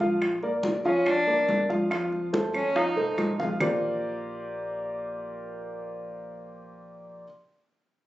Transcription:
0.00 0.79 A#1 medium
0.00 0.35 F3 medium
0.00 0.35 F4 medium
0.00 0.35 F5 medium
0.00 high bongo soft
0.00 high conga medium
0.22 high bongo medium
0.22 high conga soft
0.22 claves medium
0.43 0.77 A#3 medium
0.43 0.77 A#4 medium
0.43 0.78 D5 medium
0.43 high conga soft
0.63 high bongo medium
0.63 high conga medium
0.85 1.44 F2 medium
0.85 1.20 F3 medium
0.85 1.09 C#4 medium
0.85 1.20 F4 medium
0.85 1.20 F5 medium
0.85 high bongo soft
0.85 high conga soft
1.06 1.49 D4 medium
1.06 high bongo medium
1.06 high conga soft
1.06 claves medium
1.27 1.62 A#3 medium
1.27 1.62 A#4 medium
1.27 1.62 D5 medium
1.27 high bongo soft
1.27 high conga soft
1.48 2.48 F2 medium
1.48 high bongo soft
1.48 low bongo medium
1.48 high conga medium
1.69 1.87 F3 medium
1.69 1.87 F4 medium
1.69 1.87 F5 medium
1.69 high bongo soft
1.69 high conga medium
1.90 2.25 F3 medium
1.90 2.25 F4 medium
1.90 2.26 F5 medium
1.90 high bongo medium
1.90 high conga soft
1.90 claves medium
2.12 high conga soft
2.33 2.68 A3 medium
2.33 2.68 A4 medium
2.33 2.68 C5 medium
2.33 high bongo medium
2.33 high conga medium
2.53 2.93 F2 medium
2.53 2.78 C#4 medium
2.53 high bongo soft
2.53 high conga soft
2.53 claves medium
2.75 2.93 F3 medium
2.75 3.18 D#4 medium
2.75 2.93 F4 medium
2.75 2.93 F5 medium
2.75 high bongo medium
2.75 high conga soft
2.96 3.16 C2 medium
2.96 3.31 A3 medium
2.96 3.31 A4 medium
2.96 3.32 C5 medium
2.96 high bongo soft
2.96 high conga soft
3.18 3.55 A#1 medium
3.18 high bongo medium
3.18 high conga medium
3.18 claves medium
3.39 3.56 F3 medium
3.39 3.56 F4 medium
3.39 3.57 F5 medium
3.39 low bongo medium
3.39 high conga medium
3.60 7.24 A#1 medium
3.60 7.23 A#3 medium
3.60 7.24 F4 medium
3.60 7.24 G4 medium
3.60 7.24 A#4 medium
3.60 7.24 C5 medium
3.60 7.25 D5 medium
3.60 low bongo medium
3.60 low conga medium
3.60 claves medium

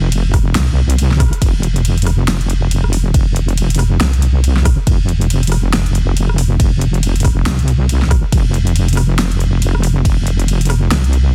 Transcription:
0.00 0.54 F1 loud
0.12 closed hi-hat medium
0.12 ride medium
0.34 kick medium
0.34 cross-stick medium
0.34 open hi-hat medium
0.55 1.31 C2 medium
0.55 snare loud
0.55 closed hi-hat medium
0.55 ride medium
0.90 closed hi-hat medium
0.98 closed hi-hat medium
0.98 ride soft
1.11 snare soft
1.20 kick loud
1.20 cross-stick medium
1.20 open hi-hat loud
1.33 closed hi-hat medium
1.42 3.13 F1 loud
1.42 kick loud
1.42 closed hi-hat medium
1.42 ride medium
1.63 closed hi-hat medium
1.76 closed hi-hat soft
1.85 closed hi-hat medium
1.85 ride soft
1.98 closed hi-hat soft
2.02 closed hi-hat medium
2.06 cross-stick medium
2.06 open hi-hat medium
2.28 snare loud
2.28 closed hi-hat medium
2.28 ride medium
2.41 closed hi-hat soft
2.50 closed hi-hat medium
2.71 closed hi-hat medium
2.71 ride soft
2.84 cross-stick medium
2.93 open hi-hat loud
3.14 3.99 F1 loud
3.14 kick loud
3.14 closed hi-hat medium
3.14 ride medium
3.36 closed hi-hat medium
3.49 closed hi-hat soft
3.58 closed hi-hat medium
3.58 ride soft
3.70 closed hi-hat medium
3.75 closed hi-hat medium
3.79 cross-stick medium
3.79 open hi-hat medium
4.01 4.76 C2 medium
4.01 snare loud
4.01 closed hi-hat medium
4.01 ride medium
4.13 closed hi-hat soft
4.22 closed hi-hat medium
4.44 closed hi-hat medium
4.44 ride soft
4.57 snare soft
4.65 kick loud
4.65 cross-stick medium
4.65 open hi-hat loud
4.87 6.58 F1 loud
4.87 kick loud
4.87 closed hi-hat medium
4.87 ride medium
5.09 closed hi-hat medium
5.21 closed hi-hat soft
5.30 closed hi-hat medium
5.30 ride soft
5.43 closed hi-hat medium
5.47 closed hi-hat medium
5.52 cross-stick medium
5.52 open hi-hat medium
5.73 snare loud
5.73 closed hi-hat medium
5.73 ride medium
5.86 closed hi-hat soft
5.95 closed hi-hat medium
6.17 closed hi-hat medium
6.17 ride soft
6.29 cross-stick medium
6.38 open hi-hat medium
6.60 7.45 F1 loud
6.60 kick loud
6.60 closed hi-hat medium
6.60 ride medium
6.81 closed hi-hat medium
6.94 closed hi-hat soft
7.03 closed hi-hat medium
7.03 ride soft
7.16 closed hi-hat soft
7.20 closed hi-hat medium
7.24 kick medium
7.24 cross-stick medium
7.24 open hi-hat medium
7.46 8.22 C2 medium
7.46 snare loud
7.46 closed hi-hat medium
7.46 ride medium
7.59 closed hi-hat soft
7.68 closed hi-hat medium
7.89 closed hi-hat medium
7.89 ride soft
8.02 snare soft
8.11 kick loud
8.11 cross-stick medium
8.11 open hi-hat medium
8.32 10.04 F1 loud
8.32 kick loud
8.32 closed hi-hat medium
8.32 ride medium
8.54 closed hi-hat soft
8.67 closed hi-hat soft
8.76 closed hi-hat medium
8.76 ride soft
8.88 closed hi-hat soft
8.93 closed hi-hat medium
8.97 cross-stick medium
8.97 open hi-hat medium
9.19 snare loud
9.19 closed hi-hat medium
9.19 ride medium
9.32 closed hi-hat soft
9.40 closed hi-hat medium
9.62 closed hi-hat medium
9.62 ride soft
9.75 cross-stick medium
9.83 open hi-hat medium
10.05 10.90 F1 loud
10.05 kick loud
10.05 closed hi-hat medium
10.05 ride medium
10.27 closed hi-hat soft
10.39 closed hi-hat soft
10.48 closed hi-hat medium
10.48 ride medium
10.61 closed hi-hat soft
10.65 closed hi-hat medium
10.70 cross-stick medium
10.70 open hi-hat medium
10.91 11.35 C2 medium
10.91 snare loud
10.91 closed hi-hat medium
10.91 ride medium
11.04 closed hi-hat soft
11.13 closed hi-hat medium

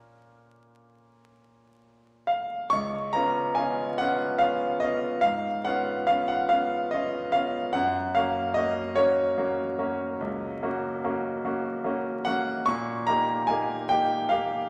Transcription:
0.00 2.65 A#2 soft
0.00 2.65 A#3 soft
0.00 2.66 C#4 soft
0.00 2.67 F4 soft
0.00 2.26 A#4 medium
2.27 2.71 F5 medium
2.70 3.13 C#2 medium
2.70 3.13 C#6 loud
3.13 3.53 B3 soft
3.13 3.53 C#4 soft
3.13 3.54 F4 medium
3.13 3.56 A#5 medium
3.55 3.95 B3 soft
3.55 3.95 C#4 soft
3.55 3.96 F4 medium
3.55 3.98 G#5 medium
3.98 4.38 B3 soft
3.98 4.38 C#4 soft
3.98 4.38 F4 medium
3.98 4.41 F#5 loud
4.38 4.79 B3 soft
4.38 4.79 C#4 soft
4.38 4.79 F4 medium
4.38 4.82 F5 loud
4.80 5.20 B3 soft
4.80 5.20 C#4 soft
4.80 5.20 F4 soft
4.80 5.23 D#5 medium
5.21 5.64 G#2 medium
5.21 5.64 F5 loud
5.64 6.04 B3 soft
5.64 6.04 C#4 soft
5.64 6.05 F4 soft
5.64 6.07 F#5 medium
6.07 6.47 B3 soft
6.07 6.47 C#4 soft
6.07 6.47 F4 medium
6.07 6.28 F5 loud
6.28 6.50 F#5 medium
6.49 6.89 B3 soft
6.49 6.89 C#4 soft
6.49 6.89 F4 soft
6.49 6.92 F5 medium
6.91 7.30 B3 soft
6.91 7.30 C#4 soft
6.91 7.30 F4 soft
6.91 7.33 D#5 medium
7.32 7.70 B3 soft
7.32 7.71 C#4 soft
7.32 7.71 F4 soft
7.32 7.74 F5 medium
7.73 8.14 F#2 medium
7.73 8.14 F#5 loud
8.15 8.52 A#3 soft
8.15 8.53 C#4 soft
8.15 8.53 F#4 medium
8.15 8.55 F5 medium
8.54 8.93 A#3 soft
8.54 8.93 C#4 soft
8.54 8.93 F#4 soft
8.54 8.96 D#5 loud
8.95 9.34 A#3 soft
8.95 9.34 C#4 medium
8.95 9.34 F#4 medium
8.95 12.26 C#5 medium
9.38 9.74 A#3 soft
9.38 9.75 C#4 soft
9.38 9.75 F#4 medium
9.79 10.16 A#3 soft
9.79 10.15 C#4 soft
9.79 10.16 F#4 soft
10.21 10.60 C#2 medium
10.63 11.00 A#3 soft
10.63 11.00 C#4 soft
10.63 11.00 F#4 soft
11.04 11.41 A#3 soft
11.04 11.41 C#4 soft
11.04 11.41 F#4 soft
11.45 11.82 A#3 soft
11.45 11.82 C#4 soft
11.45 11.82 F#4 soft
11.84 12.22 A#3 soft
11.84 12.22 C#4 soft
11.84 12.23 F#4 soft
12.25 12.64 A#3 soft
12.25 12.64 C#4 soft
12.25 12.64 F#4 soft
12.25 12.67 F#5 loud
12.66 13.07 A#2 medium
12.66 13.07 C#6 loud
13.07 13.44 A#3 soft
13.07 13.45 D#4 soft
13.07 13.45 G4 soft
13.07 13.48 A#5 loud
13.47 13.85 A#3 soft
13.47 13.86 D#4 soft
13.47 13.86 G4 soft
13.47 13.88 G#5 medium
13.89 14.27 A#3 soft
13.89 14.27 D#4 soft
13.89 14.27 G4 medium
13.89 14.30 G5 medium
14.29 14.67 A#3 soft
14.29 14.67 D#4 soft
14.29 14.68 G4 soft
14.29 14.69 F5 medium

